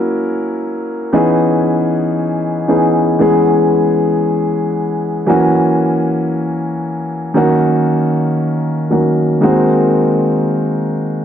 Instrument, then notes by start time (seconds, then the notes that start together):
grand piano
Already playing: F#3 A#3 C#4 E4 A#4
1.13 E3 B3 C#4 D#4 G#4
2.68 E3 B3 C#4 D#4 G#4
3.19 E3 G#3 B3 C#4 G#4
5.27 E3 F#3 A#3 C#4 F#4
7.34 D#3 F#3 A#3 C#4 F#4
8.90 D#3 F#3 A#3 C#4 F#4
9.41 D#3 G#3 A#3 C4 F#4